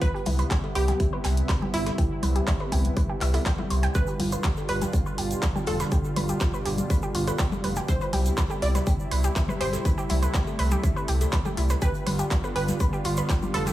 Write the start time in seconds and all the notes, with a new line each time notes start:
Already playing: B3
0.01 C3 G3 E4 B4, kick, closed hi-hat
0.14 G4, closed hi-hat
0.25 C2 E4, open hi-hat, high conga
0.39 B4, closed hi-hat
0.51 G4, kick, snare, clap, closed hi-hat
0.64 cowbell
0.75 C2 G4 B4, closed hi-hat, open hi-hat
0.88 G4, snare, closed hi-hat, high conga
1.00 E4, kick, closed hi-hat
1.13 B4
1.24 C2 G4, snare, closed hi-hat, open hi-hat
1.37 closed hi-hat
1.49 B4, kick, snare, clap, closed hi-hat
1.62 G4, high conga
1.74 G1 E4, closed hi-hat, open hi-hat
1.86 B4, snare, closed hi-hat, cowbell
1.98 G4, kick, closed hi-hat
2.23 C2 B4, closed hi-hat, open hi-hat, high conga
2.36 G4, closed hi-hat
2.47 E4, kick, snare, clap, closed hi-hat
2.60 B4, cowbell
2.72 C2 G4, kick, closed hi-hat, open hi-hat
2.84 closed hi-hat, high conga
2.97 B4, kick, closed hi-hat
3.09 G4
3.21 C2 E5, clap, closed hi-hat, open hi-hat
3.34 E4, open hi-hat, cowbell
3.46 G5, kick, snare, clap, closed hi-hat
3.58 E4, cowbell, high conga
3.70 C2 C5, closed hi-hat, open hi-hat
3.83 G5, snare, closed hi-hat
3.95 B2 D3 F4 B4, kick, closed hi-hat, shaker
4.07 G4, closed hi-hat, shaker
4.19 G1 F4, open hi-hat, high conga
4.32 B4, closed hi-hat, shaker
4.43 G4, kick, snare, clap, closed hi-hat, shaker
4.57 cowbell, shaker
4.68 G1 B4, closed hi-hat, open hi-hat
4.81 G4, snare, closed hi-hat, high conga, shaker
4.93 F4, kick, closed hi-hat, shaker
5.06 B4, shaker
5.18 G1 G4, closed hi-hat, open hi-hat
5.31 closed hi-hat, shaker
5.42 B4, kick, snare, clap, closed hi-hat, shaker
5.55 G4, high conga, shaker
5.66 F1 F4 A4, closed hi-hat, open hi-hat
5.80 B4, snare, closed hi-hat, cowbell, shaker
5.92 G4, kick, closed hi-hat, shaker
6.04 shaker
6.16 G1 B4, closed hi-hat, open hi-hat, high conga
6.29 G4, closed hi-hat, shaker
6.40 F4, kick, snare, clap, closed hi-hat, shaker
6.54 B4, shaker
6.65 G1 G4, closed hi-hat, open hi-hat
6.78 closed hi-hat, high conga, shaker
6.90 B4, kick, closed hi-hat, shaker
7.02 G4, shaker
7.15 G1 F4, closed hi-hat, open hi-hat
7.27 B4, closed hi-hat, cowbell, shaker
7.38 G4, kick, snare, clap, closed hi-hat, shaker
7.52 cowbell, high conga, shaker
7.64 F1 B4, closed hi-hat, open hi-hat
7.76 G4, snare, closed hi-hat, shaker
7.88 C3 E4 C5, kick, closed hi-hat, shaker
8.01 B4, closed hi-hat, shaker
8.13 C2 G4, open hi-hat, high conga
8.26 closed hi-hat, shaker
8.37 B4, kick, snare, clap, closed hi-hat, shaker
8.50 G4, cowbell, shaker
8.62 C2 E4 D5, closed hi-hat, open hi-hat
8.75 B4, snare, closed hi-hat, high conga, shaker
8.87 G4, kick, closed hi-hat, shaker
9.00 shaker
9.11 C2 B4, closed hi-hat, open hi-hat
9.24 G4, closed hi-hat, shaker
9.36 E4, kick, snare, clap, closed hi-hat, shaker
9.48 B4, high conga, shaker
9.61 G1 G4 C5, closed hi-hat, open hi-hat
9.73 snare, closed hi-hat, cowbell, shaker
9.85 A3 B4, kick, closed hi-hat, shaker
9.98 G4, shaker
10.09 C2 E4, closed hi-hat, open hi-hat, high conga
10.22 B4, closed hi-hat, shaker
10.33 G4, kick, snare, clap, closed hi-hat, shaker
10.47 cowbell, shaker
10.59 C2 B4, closed hi-hat, open hi-hat
10.71 G4, closed hi-hat, high conga, shaker
10.84 E4, kick, closed hi-hat, shaker
10.96 B4, shaker
11.08 C2 G4, closed hi-hat, open hi-hat
11.21 closed hi-hat, cowbell, shaker
11.32 B4, kick, snare, clap, closed hi-hat, shaker
11.45 G4, cowbell, high conga, shaker
11.57 C2 E4, closed hi-hat, open hi-hat
11.70 B4, snare, closed hi-hat, shaker
11.81 D3 G3 B3 F4 G4 B4, kick, closed hi-hat, shaker
11.94 closed hi-hat, shaker
12.06 G1 B4, open hi-hat, high conga
12.19 G4, closed hi-hat, shaker
12.31 F4, kick, snare, clap, closed hi-hat, shaker
12.44 B4, cowbell, shaker
12.56 G1 G4 B4, closed hi-hat, open hi-hat
12.68 snare, closed hi-hat, high conga, shaker
12.80 B4, kick, closed hi-hat, shaker
12.93 G4, shaker
13.04 G1 F4, closed hi-hat, open hi-hat
13.17 B4, closed hi-hat, shaker
13.29 G4, kick, snare, clap, closed hi-hat, shaker
13.42 high conga, shaker
13.54 F1 A4 B4, closed hi-hat, open hi-hat
13.66 G4, snare, closed hi-hat, cowbell, shaker